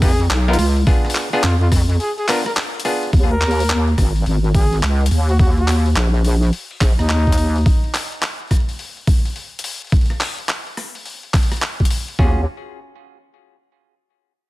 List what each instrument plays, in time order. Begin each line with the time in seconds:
Already playing: wobble bass F2
0.02 clav B3 D#4 F4 B4, trumpet G#4, kick, open hi-hat
0.20 open hi-hat
0.30 wobble bass B1, clap, open hi-hat
0.48 clav B3 D#4 F4 A#4, trumpet F4, open hi-hat
0.53 closed hi-hat
0.58 wobble bass C#2, open hi-hat
0.76 open hi-hat
0.87 clav B3 D4 F4 G#4, kick, open hi-hat
1.05 cross-stick, open hi-hat
1.10 open hi-hat
1.15 clap
1.33 clav B3 D4 F4 G#4, open hi-hat
1.43 wobble bass F2, trumpet F4, clap, open hi-hat
1.61 trumpet F4, open hi-hat
1.72 kick, cross-stick, open hi-hat
1.90 open hi-hat
2.00 trumpet G#4, open hi-hat
2.18 trumpet G#4, open hi-hat
2.28 clav B3 D4 F4 B4, trumpet A#4, clap, open hi-hat
2.46 trumpet A#4, cross-stick, open hi-hat
2.57 clap, open hi-hat
2.75 open hi-hat
2.80 closed hi-hat
2.85 clav B3 D4 F4 G#4, open hi-hat
3.03 open hi-hat
3.13 wobble bass D#2, kick, open hi-hat
3.31 trumpet A#4, open hi-hat
3.41 clap, open hi-hat
3.51 open hi-hat
3.59 open hi-hat
3.70 clap
3.88 open hi-hat
3.98 wobble bass G#1, kick, cross-stick, open hi-hat
4.16 open hi-hat
4.26 wobble bass G#1, open hi-hat
4.44 open hi-hat
4.55 trumpet G#4, kick, open hi-hat
4.73 open hi-hat
4.83 wobble bass C#2, clap, open hi-hat
5.01 open hi-hat
5.06 closed hi-hat
5.11 wobble bass D#2, open hi-hat
5.29 trumpet F#4, open hi-hat
5.39 trumpet F#4, kick, open hi-hat
5.57 trumpet F#4, open hi-hat
5.68 clap, open hi-hat
5.86 open hi-hat
5.96 wobble bass A#1, clap, open hi-hat
6.14 open hi-hat
6.25 open hi-hat
6.42 open hi-hat
6.53 open hi-hat
6.71 open hi-hat
6.81 wobble bass A#1, kick, clap, open hi-hat
6.99 wobble bass D#2, trumpet D#4, cross-stick, open hi-hat
7.09 clap, open hi-hat
7.27 kick, open hi-hat
7.32 closed hi-hat
7.38 wobble bass D#2, open hi-hat
7.56 open hi-hat
7.58 open hi-hat
7.61 open hi-hat
7.63 open hi-hat
7.66 kick, open hi-hat
7.84 open hi-hat
7.94 clap, open hi-hat
8.12 open hi-hat
8.14 open hi-hat
8.17 open hi-hat
8.19 open hi-hat
8.21 clap, open hi-hat
8.22 open hi-hat
8.40 open hi-hat
8.47 kick, cross-stick, open hi-hat
8.51 open hi-hat
8.57 open hi-hat
8.60 open hi-hat
8.69 open hi-hat
8.79 open hi-hat
8.97 open hi-hat
9.07 kick, open hi-hat
9.25 open hi-hat
9.36 open hi-hat
9.59 closed hi-hat
9.64 open hi-hat
9.82 open hi-hat
9.85 open hi-hat
9.87 open hi-hat
9.90 open hi-hat
9.92 kick, open hi-hat
9.97 open hi-hat
10.01 open hi-hat
10.06 open hi-hat
10.10 cross-stick, open hi-hat
10.20 clap, open hi-hat
10.38 open hi-hat
10.49 clap, open hi-hat
10.67 open hi-hat
10.77 cross-stick, open hi-hat
10.95 open hi-hat
11.05 open hi-hat
11.23 open hi-hat
11.34 kick, clap, open hi-hat
11.43 open hi-hat
11.52 cross-stick, open hi-hat
11.57 open hi-hat
11.62 clap, open hi-hat
11.80 kick, open hi-hat
11.85 closed hi-hat
11.90 open hi-hat
12.08 open hi-hat
12.19 wobble bass D#2, clav C#4 F4 F#4 G#4, kick